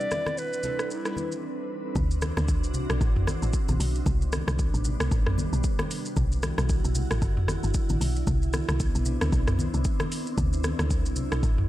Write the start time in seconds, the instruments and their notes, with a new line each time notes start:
Already playing: ambient pad E3 C4 D4 B4, synth keys G3 C4 D4 E4 B4, clarinet D5
0.00 shaker
0.11 cross-stick, high conga, shaker
0.26 cross-stick, high conga, shaker
0.38 clarinet B4, shaker
0.53 shaker
0.63 synth keys G3 C4 D4 E4 A4, low conga, shaker
0.79 cross-stick, shaker
0.91 clarinet E4, shaker
1.05 synth keys G3 C4 D4 D#4 B4, cross-stick, shaker
1.12 synth keys E4
1.17 high conga, shaker
1.32 shaker
1.95 log drum bass D2, ambient pad E3 C4 D4 F#4, kick, low conga, shaker
2.11 shaker
2.22 cross-stick, high conga, shaker
2.37 log drum bass D2, cross-stick, high conga, shaker
2.48 kick, shaker
2.64 log drum bass C2, shaker
2.74 low conga, shaker
2.90 log drum bass B1, cross-stick, shaker
3.01 log drum bass A1, kick, shaker
3.16 mid tom
3.27 cross-stick, high conga, shaker
3.42 log drum bass A1, shaker
3.53 kick, shaker
3.68 log drum bass A#1, high conga, shaker
3.80 log drum bass B1, open hi-hat, shaker
3.95 shaker
4.06 log drum bass C2, ambient pad C3 G3 B3 D4, kick, low conga, shaker
4.22 shaker
4.32 cross-stick, high conga, shaker
4.48 log drum bass C2, cross-stick, high conga, shaker
4.59 kick, shaker
4.74 log drum bass A1, shaker
4.84 low conga, shaker
5.00 log drum bass C2, cross-stick, shaker
5.11 log drum bass A1, kick, shaker
5.27 cross-stick, mid tom
5.38 high conga, shaker
5.53 log drum bass B1, shaker
5.64 kick, shaker
5.79 cross-stick, high conga, shaker
5.91 ambient pad D3 E4 F#4, open hi-hat, shaker
6.06 shaker
6.16 log drum bass B1, kick, low conga, shaker
6.32 shaker
6.43 cross-stick, high conga, shaker
6.58 log drum bass B1, cross-stick, high conga, shaker
6.69 kick, shaker
6.85 log drum bass B1, shaker
6.95 low conga, shaker
7.11 log drum bass A1, cross-stick, shaker
7.22 log drum bass G1, kick, shaker
7.37 mid tom
7.48 cross-stick, high conga, shaker
7.63 log drum bass G1, shaker
7.74 kick, shaker
7.89 log drum bass A1, high conga, shaker
8.01 log drum bass B1, open hi-hat, shaker
8.16 shaker
8.27 log drum bass C2, ambient pad B3 C4 D4, kick, low conga, shaker
8.42 shaker
8.53 cross-stick, high conga, shaker
8.69 log drum bass C2, cross-stick, high conga, shaker
8.80 kick, shaker
8.95 log drum bass B1, shaker
9.05 low conga, shaker
9.21 log drum bass D2, cross-stick, shaker
9.32 log drum bass B1, kick, shaker
9.48 cross-stick, mid tom, shaker
9.59 high conga, shaker
9.74 log drum bass C2, shaker
9.84 kick, shaker
10.00 cross-stick, high conga, shaker
10.12 open hi-hat, shaker
10.27 shaker
10.37 log drum bass D2, ambient pad F#3 E4, kick, low conga, shaker
10.53 shaker
10.64 cross-stick, high conga, shaker
10.79 log drum bass D2, cross-stick, high conga, shaker
10.90 kick, shaker
11.06 log drum bass C2, shaker
11.16 low conga, shaker
11.32 log drum bass B1, cross-stick, shaker
11.43 log drum bass A1, kick, shaker
11.58 mid tom